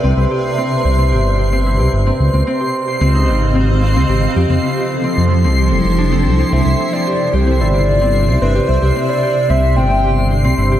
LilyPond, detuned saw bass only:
\new Staff \with { instrumentName = "Detuned saw bass" } { \clef bass \time 4/4 \key c \major \tempo 4 = 111 c,16 c,16 r4 c,8 g,,4~ g,,16 c,16 g,,16 r16 | des,16 des,16 r4 des,8 aes,,4~ aes,,16 des,16 aes,,16 r16 | f,16 f,16 r4 f,8 c,8 f,,16 f,,8. c,16 r16 | c,16 c,16 r4 c,8 g,,4~ g,,16 c,16 g,,16 r16 |
c,16 c,16 r4 c,8 g,,4~ g,,16 c,16 g,,16 r16 | }